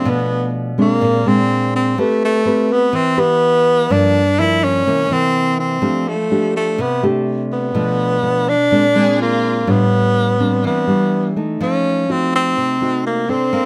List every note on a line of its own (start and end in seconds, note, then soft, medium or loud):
0.00 0.73 F3 medium
0.00 0.73 A3 medium
0.00 0.11 C4 medium
0.00 0.74 D4 medium
0.05 0.99 B2 medium
0.10 0.52 B3 medium
0.78 1.22 G#3 medium
0.78 1.29 A#3 medium
0.78 1.22 C4 medium
0.78 1.22 D4 medium
1.01 1.95 A#2 medium
1.25 1.96 G#3 medium
1.25 1.96 C4 medium
1.25 1.75 C4 medium
1.25 1.96 D4 medium
1.76 2.01 C4 medium
1.98 2.92 A3 medium
1.98 2.22 A3 medium
1.98 2.42 C4 soft
1.98 2.42 G4 medium
1.98 2.42 B4 medium
2.25 2.74 A3 medium
2.45 3.14 C4 medium
2.45 3.14 G4 medium
2.45 3.14 B4 medium
2.72 2.97 B3 medium
2.93 3.87 E3 medium
2.93 3.21 C4 medium
3.18 3.93 B3 loud
3.18 3.86 G4 medium
3.18 3.86 B4 medium
3.90 4.84 G2 medium
3.90 4.21 F3 medium
3.90 4.21 A#3 medium
3.90 4.21 D4 medium
3.90 4.41 D4 medium
4.39 4.84 F3 medium
4.39 4.84 A#3 medium
4.39 4.85 D4 medium
4.39 4.65 E4 loud
4.64 5.14 C#4 loud
4.87 5.80 C3 medium
4.87 5.06 E3 medium
4.87 5.07 A#3 medium
4.87 5.07 C#4 medium
5.10 5.78 E3 medium
5.10 5.78 A#3 medium
5.10 5.59 C4 loud
5.60 6.10 C4 medium
5.82 6.76 F3 medium
5.82 6.13 A3 medium
5.82 6.13 D4 medium
5.82 6.13 G4 medium
6.09 6.55 A3 medium
6.31 6.78 A3 medium
6.31 6.78 D4 medium
6.31 6.79 G4 medium
6.57 6.83 A3 medium
6.78 7.72 C3 medium
6.78 7.04 B3 medium
7.03 7.71 A3 medium
7.03 7.71 D4 medium
7.03 7.71 G4 medium
7.53 8.50 B3 medium
7.75 8.68 B2 medium
7.75 8.19 F3 medium
7.75 8.19 A3 medium
7.75 8.19 D4 medium
8.22 8.55 F3 medium
8.22 8.55 A3 medium
8.22 8.55 D4 medium
8.49 9.20 D4 loud
8.71 9.65 A#2 medium
8.71 8.85 G#3 medium
8.71 8.86 C4 medium
8.71 8.86 D4 medium
8.95 9.63 G#3 medium
8.95 9.63 C4 medium
8.95 9.64 D4 medium
8.95 9.18 G#4 medium
9.19 9.72 A#3 medium
9.19 9.67 F4 medium
9.67 10.61 A2 medium
9.67 10.35 G3 medium
9.67 10.65 B3 medium
9.67 10.36 D4 medium
10.40 10.84 G3 medium
10.40 10.84 C4 medium
10.40 10.84 D4 medium
10.64 11.58 E3 medium
10.64 11.33 B3 medium
10.87 11.32 G3 medium
10.87 11.32 D4 medium
11.36 12.04 A3 medium
11.36 12.04 D#4 medium
11.61 12.54 F3 medium
11.61 12.13 C#4 medium
12.09 12.77 A3 medium
12.09 12.34 C4 medium
12.09 12.77 D#4 medium
12.09 12.77 F#4 medium
12.36 13.02 C4 medium
12.57 13.51 C3 medium
12.81 13.25 A3 medium
12.81 13.25 D#4 medium
12.81 13.26 F#4 medium
13.07 13.31 A#3 medium
13.29 13.65 C4 medium
13.29 13.65 D4 medium
13.29 13.65 A4 medium
13.29 13.65 C5 medium
13.53 13.65 A#3 medium